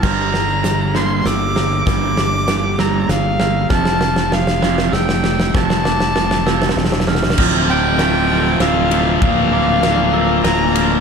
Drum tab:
CC |x-----------------------|------------------------|------------------------|------------------------|
RD |------------------------|------------------------|------------------------|------------------------|
HH |--------x-------x-------|x-------x-------x-------|------------------------|------------------------|
SD |o---o---o---o---o---o---|o---o---o---o---o---o---|o-o-o-o-o-o-o-o-o-o-o-o-|o-o-o-o-o-o-o-oooooooooo|
BD |o-----------------------|o-----------------------|o-----------------------|o-----------------------|

CC |x-----------------------|------------------------|
RD |--------x-------x---x---|x-------x-------x---x---|
HH |------------------------|------------------------|
SD |--------o-------o-------|--------o-------o-------|
BD |o-----------------------|o-----------------------|